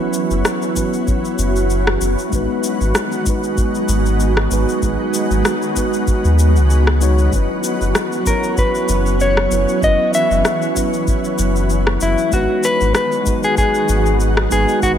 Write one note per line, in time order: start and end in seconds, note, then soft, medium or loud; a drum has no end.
0.00 2.28 E3 medium
0.00 0.75 F#3 medium
0.00 12.28 F#3 medium
0.00 0.75 B3 medium
0.00 12.28 B3 medium
0.00 0.76 C#4 medium
0.00 2.28 C#4 medium
0.00 0.77 E4 medium
0.00 12.28 F#4 medium
0.00 0.78 B4 medium
0.13 cabasa medium
0.31 0.42 F#1 medium
0.31 cabasa soft
0.45 cross-stick medium
0.45 cabasa soft
0.62 cabasa soft
0.75 0.91 F#3 medium
0.75 0.92 B3 medium
0.75 0.92 C#4 medium
0.75 0.92 E4 medium
0.75 0.93 B4 medium
0.75 kick medium
0.75 cabasa medium
0.94 cabasa soft
1.07 kick loud
1.07 cabasa soft
1.25 cabasa soft
1.38 1.97 F#1 medium
1.38 cabasa medium
1.56 cabasa soft
1.70 cabasa soft
1.87 cross-stick medium
2.01 2.15 F#1 medium
2.01 cabasa medium
2.18 cabasa soft
2.29 2.46 G#1 medium
2.29 7.28 D#3 medium
2.29 3.21 G#3 medium
2.29 7.28 G#3 medium
2.29 3.22 B3 medium
2.29 3.23 D#4 medium
2.29 kick loud
2.29 cabasa soft
2.34 3.23 F#4 medium
2.34 3.24 B4 medium
2.64 cabasa medium
2.81 2.92 G#1 medium
2.81 cabasa soft
2.95 cross-stick medium
2.95 cabasa soft
3.12 cabasa soft
3.23 4.46 G#3 medium
3.23 4.47 B3 medium
3.23 4.48 D#4 medium
3.23 kick loud
3.23 cabasa medium
3.28 4.49 F#4 medium
3.28 4.49 B4 medium
3.44 cabasa soft
3.57 kick loud
3.57 cabasa soft
3.75 cabasa soft
3.88 4.47 G#1 loud
3.88 cabasa medium
4.06 cabasa soft
4.20 cabasa soft
4.37 cross-stick medium
4.50 4.65 G#1 loud
4.50 4.78 G#3 medium
4.50 4.79 B3 medium
4.50 4.79 D#4 medium
4.50 4.80 F#4 medium
4.50 4.80 B4 medium
4.50 cabasa medium
4.69 cabasa soft
4.80 4.96 G#1 medium
4.80 5.71 G#3 medium
4.80 5.72 B3 medium
4.80 5.73 D#4 medium
4.80 kick loud
4.80 cabasa soft
4.84 5.74 F#4 medium
4.84 5.74 B4 medium
5.14 cabasa medium
5.30 5.42 G#1 medium
5.30 cabasa soft
5.45 cross-stick medium
5.45 cabasa soft
5.62 cabasa soft
5.75 5.91 G#3 medium
5.75 5.92 B3 medium
5.75 5.92 D#4 medium
5.75 5.92 F#4 medium
5.75 5.93 B4 medium
5.75 kick medium
5.75 cabasa medium
5.93 cabasa soft
6.07 kick loud
6.07 cabasa soft
6.24 6.57 D#2 medium
6.24 cabasa soft
6.39 cabasa medium
6.56 7.28 C#2 medium
6.56 cabasa soft
6.70 cabasa soft
6.87 cross-stick medium
7.00 7.28 G#3 medium
7.00 7.29 B3 medium
7.00 7.29 D#4 medium
7.00 7.30 F#4 medium
7.00 7.30 C#5 loud
7.00 cabasa medium
7.18 cabasa soft
7.30 7.46 F#1 loud
7.30 12.28 E3 medium
7.30 8.21 F#3 medium
7.30 8.22 B3 medium
7.30 8.23 C#4 medium
7.30 12.28 C#4 medium
7.30 kick loud
7.30 cabasa soft
7.34 8.24 E4 medium
7.34 8.24 B4 medium
7.64 cabasa medium
7.81 7.92 F#1 medium
7.81 cabasa soft
7.95 cross-stick medium
7.95 cabasa soft
8.12 cabasa soft
8.23 9.46 F#3 medium
8.23 9.47 B3 medium
8.23 9.48 C#4 medium
8.23 kick loud
8.23 cabasa medium
8.27 9.49 E4 medium
8.27 8.56 A#4 medium
8.27 9.49 C#5 medium
8.44 cabasa soft
8.57 9.21 B4 medium
8.57 kick loud
8.57 cabasa soft
8.75 cabasa soft
8.89 9.47 F#1 loud
8.89 cabasa medium
9.06 cabasa soft
9.20 9.83 C#5 medium
9.20 cabasa soft
9.37 cross-stick medium
9.49 9.65 F#1 loud
9.49 9.78 F#3 medium
9.49 9.79 B3 medium
9.49 9.79 C#4 medium
9.49 9.79 E4 medium
9.49 9.80 B4 medium
9.49 cabasa medium
9.69 cabasa soft
9.79 9.96 F#1 loud
9.79 10.71 F#3 medium
9.79 10.72 B3 medium
9.79 10.73 C#4 medium
9.79 kick loud
9.79 cabasa soft
9.84 10.73 E4 medium
9.84 10.74 B4 medium
9.84 10.14 D#5 medium
10.14 10.73 E5 loud
10.14 cabasa medium
10.31 10.42 F#1 medium
10.31 cabasa soft
10.45 cross-stick medium
10.45 cabasa soft
10.62 cabasa soft
10.75 10.91 F#3 medium
10.75 10.92 B3 medium
10.75 10.92 C#4 medium
10.75 10.93 E4 medium
10.75 10.93 B4 medium
10.75 kick medium
10.75 cabasa medium
10.93 cabasa soft
11.07 kick loud
11.07 cabasa soft
11.24 cabasa soft
11.39 11.97 F#1 loud
11.39 cabasa medium
11.56 cabasa soft
11.70 cabasa soft
11.87 cross-stick medium
12.01 12.15 F#1 loud
12.01 12.31 E4 medium
12.01 cabasa medium
12.18 cabasa soft
12.29 12.46 G#1 loud
12.29 14.98 D#3 medium
12.29 14.98 F#3 medium
12.29 13.21 G#3 medium
12.29 14.98 G#3 medium
12.29 13.22 B3 medium
12.29 14.98 B3 medium
12.29 13.23 D#4 medium
12.29 14.80 F#4 medium
12.29 kick loud
12.29 cabasa soft
12.33 12.65 F#4 medium
12.33 13.23 F#4 medium
12.33 13.24 B4 medium
12.63 12.95 B4 loud
12.63 cabasa medium
12.80 12.92 G#1 medium
12.80 cabasa soft
12.95 13.44 B4 medium
12.95 cross-stick medium
12.95 cabasa soft
13.12 cabasa soft
13.23 14.46 G#3 medium
13.23 14.47 B3 medium
13.23 14.48 D#4 medium
13.23 kick medium
13.23 cabasa medium
13.28 14.49 F#4 medium
13.28 14.49 B4 medium
13.43 13.57 G#4 loud
13.43 cabasa soft
13.57 14.16 G#4 medium
13.57 kick loud
13.57 cabasa soft
13.75 cabasa soft
13.89 14.47 G#1 medium
13.89 cabasa medium
14.06 cabasa soft
14.20 cabasa soft
14.37 cross-stick medium
14.50 14.65 G#1 medium
14.50 14.78 G#3 medium
14.50 14.79 B3 medium
14.50 14.79 D#4 medium
14.50 14.79 F#4 medium
14.50 14.83 G#4 medium
14.50 14.80 B4 medium
14.50 cabasa medium
14.69 cabasa soft
14.80 14.96 G#1 loud
14.80 14.98 G#3 medium
14.80 14.98 B3 medium
14.80 14.98 D#4 medium
14.80 14.91 F#4 loud
14.80 14.98 G#4 medium
14.80 kick loud
14.80 cabasa soft
14.84 14.98 F#4 medium
14.84 14.98 B4 medium